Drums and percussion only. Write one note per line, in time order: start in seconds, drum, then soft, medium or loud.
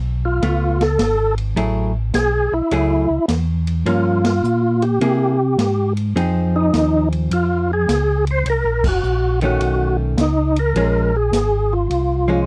0.42 ride medium
0.81 snare soft
0.81 ride soft
0.99 snare medium
0.99 hi-hat pedal soft
0.99 ride medium
1.38 ride soft
1.57 ride medium
2.14 snare medium
2.14 hi-hat pedal soft
2.14 ride medium
2.71 ride medium
3.28 snare medium
3.28 hi-hat pedal medium
3.28 ride medium
3.67 ride soft
3.86 ride medium
4.24 snare medium
4.24 ride medium
4.44 hi-hat pedal soft
4.82 ride soft
5.01 ride medium
5.59 snare medium
5.59 hi-hat pedal medium
5.59 ride medium
5.97 ride soft
6.17 ride medium
6.73 snare medium
6.73 hi-hat pedal soft
6.73 ride medium
7.12 ride soft
7.31 ride medium
7.89 snare medium
7.89 hi-hat pedal medium
7.89 ride medium
8.27 ride soft
8.46 ride medium
8.84 kick medium
8.84 crash medium
9.03 hi-hat pedal soft
9.41 ride soft
9.60 ride medium
10.18 snare medium
10.18 hi-hat pedal medium
10.18 ride medium
10.56 ride soft
10.76 ride medium
11.33 snare medium
11.33 hi-hat pedal medium
11.33 ride medium
11.90 ride medium